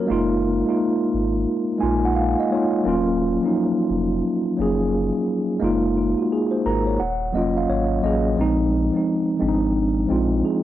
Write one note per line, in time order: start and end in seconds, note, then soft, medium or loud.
0.00 0.11 F#3 medium
0.00 0.08 A#3 medium
0.00 0.12 C#4 medium
0.00 0.12 F#4 medium
0.00 0.31 A#4 medium
0.00 0.12 C#5 medium
0.07 0.63 F#1 loud
0.07 0.47 G#3 loud
0.07 0.48 A#3 loud
0.07 0.49 D#4 loud
0.11 0.50 F4 loud
0.66 1.50 G#3 medium
0.66 1.51 A#3 medium
0.66 1.52 D#4 medium
0.70 1.53 F4 medium
1.14 1.46 G#1 medium
1.78 2.35 G#3 medium
1.78 2.36 A#3 medium
1.78 2.37 D#4 medium
1.78 2.02 G#5 medium
1.83 2.35 A#1 medium
1.83 2.38 F4 loud
2.05 2.16 F#5 medium
2.16 2.37 F5 medium
2.40 2.51 D#5 medium
2.50 2.79 G#3 medium
2.50 2.79 A#3 medium
2.50 2.80 D#4 medium
2.50 2.84 C#5 medium
2.55 2.81 F4 medium
2.84 3.39 D#1 loud
2.84 3.24 F#3 loud
2.84 3.24 A#3 loud
2.84 3.25 C#4 loud
2.88 3.26 F4 loud
3.41 3.46 F3 medium
3.41 4.27 A#3 medium
3.41 4.28 C#4 medium
3.46 4.29 F#3 medium
3.46 4.28 D#4 medium
3.90 4.22 F1 medium
4.57 5.11 F#1 medium
4.57 5.35 F#3 medium
4.57 5.36 A#3 medium
4.57 5.37 C#4 medium
4.62 5.38 G#4 loud
5.60 6.15 F#1 loud
5.60 6.00 G#3 loud
5.60 6.00 A#3 loud
5.60 6.01 D#4 loud
5.64 5.96 F4 loud
5.97 6.18 F4 medium
6.19 6.30 F#4 medium
6.32 6.52 G#4 medium
6.51 6.64 C5 medium
6.66 6.98 G#1 medium
6.66 6.87 A#4 medium
6.66 6.98 A#5 medium
6.87 7.20 C#5 medium
7.00 7.32 D#1 loud
7.00 7.32 F#5 medium
7.33 7.67 F1 loud
7.33 7.88 F#3 medium
7.33 7.89 A#3 medium
7.33 7.90 C#4 medium
7.33 7.55 D#5 medium
7.37 7.91 F4 medium
7.57 7.68 F5 medium
7.69 8.01 G#1 medium
7.69 8.01 C#5 medium
8.01 8.36 A1 loud
8.01 8.30 F#3 medium
8.01 8.31 A#3 medium
8.01 8.32 C#4 medium
8.01 8.36 D#5 medium
8.06 8.32 G#4 medium
8.36 8.91 A#1 loud
8.36 8.76 F3 loud
8.36 8.77 G#3 medium
8.36 8.77 C4 medium
8.41 8.78 D#4 loud
8.92 9.30 F3 medium
8.92 9.31 G#3 medium
8.92 9.32 C4 medium
8.97 9.32 D#4 medium
9.37 9.94 F3 medium
9.37 9.95 G#3 medium
9.37 9.96 C4 medium
9.41 10.06 G#1 medium
9.41 9.50 D4 medium
9.48 10.00 D#4 loud
10.07 10.42 A#1 loud
10.07 10.63 F3 medium
10.07 10.63 G#3 medium
10.07 10.63 C4 medium
10.12 10.63 F4 medium
10.45 10.63 G#4 medium